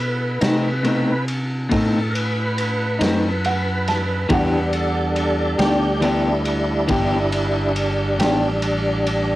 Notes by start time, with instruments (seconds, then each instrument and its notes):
Already playing: fingered electric bass B2, grand piano A4 C5 D#5, tonewheel organ B4
0.41 fingered electric bass C3, clean electric guitar A3 C4 D#4, snare, ride
0.83 clean electric guitar B2 A3 C4 D#4, ride
1.28 ride
1.69 fingered electric bass A2, clean electric guitar B2 A3 C4 D#4, tonewheel organ A4, kick, ride
2.10 tonewheel organ A#4
2.15 tonewheel organ B4, ride
2.58 ride
2.99 fingered electric bass F#2, clean electric guitar A3 C4 D#4, snare, ride
3.45 grand piano F#5, ride
3.88 grand piano A5, snare, ride
4.29 fingered electric bass E2, clean electric guitar E3 B3 D4 G4, tonewheel organ G3 D4, grand piano G4 D5, kick, ride
4.34 grand piano F#5
4.73 tonewheel organ A4, ride
5.16 tonewheel organ A4, ride
5.58 fingered electric bass D2, clean electric guitar B3 D4 G4, tonewheel organ G4, snare, ride
6.01 clean electric guitar E3 B3 D4 G4, tonewheel organ E4, ride
6.45 ride
6.88 fingered electric bass G1, clean electric guitar E3 B3 D4 G4, kick, ride
7.32 ride
7.76 ride
8.18 fingered electric bass A1, clean electric guitar D4 G4, snare, ride
8.23 clean electric guitar B3
8.62 ride
9.07 ride